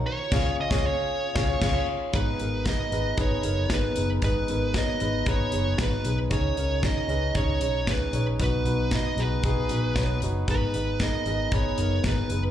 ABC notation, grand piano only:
X:1
M:4/4
L:1/16
Q:1/4=115
K:Abdor
V:1 name="Grand piano"
z2 [DFAd]2 z [DFAd]2 z3 [DFAd]2 [DFA]2 z2 | [CEAc]2 [CEAB]2 [CEAc]2 [CEAc]2 [CEAc]2 [CEAB]2 [CEAc]2 [CEAc]2 | [CEAc]2 [CEAB]2 [CEAd]2 [CEAc]2 [CEAc]2 [CEAd]2 [CEAc]2 [CEAc]2 | [DEAd]2 [DEAB]2 [DEAd]2 [DEAc]2 [DEAd]2 [DEAd]2 [DEAd]2 [DEAd]2 |
[CEGc]2 [CEGc]2 [CEGc]2 [CEGA]2 [CEGA]2 [CEGc]2 [CEGd]2 [CEGc]2 | [CEAc]2 [CEAc]2 [CEAB]2 [CEAc]2 [CEAc]2 [CEAB]2 [CEAc]2 [CEAc]2 |]
V:2 name="Grand piano" clef=bass
z16 | A,,6 z8 z2 | A,,6 z8 z2 | D,6 z8 z2 |
C,6 z8 z2 | A,,6 z8 z2 |]